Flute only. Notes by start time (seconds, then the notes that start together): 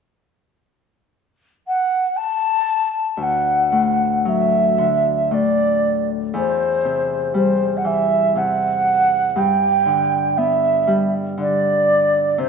1.67 F#5
2.16 A5
3.22 F#5
4.28 E5
5.33 D5
6.37 C5
7.36 C5
7.77 F#5
7.86 E5
8.37 F#5
9.38 G5
10.37 E5
11.40 D5
12.39 C5